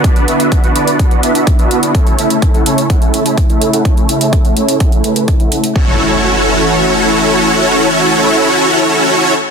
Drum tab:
HH |xxxxxxxxxxxxxxxx|xxxxxxxxxxxxxxxx|xxxxxxxxxxxxxxxx|----------------|
BD |o---o---o---o---|o---o---o---o---|o---o---o---o---|o---------------|

HH |----------------|
BD |----------------|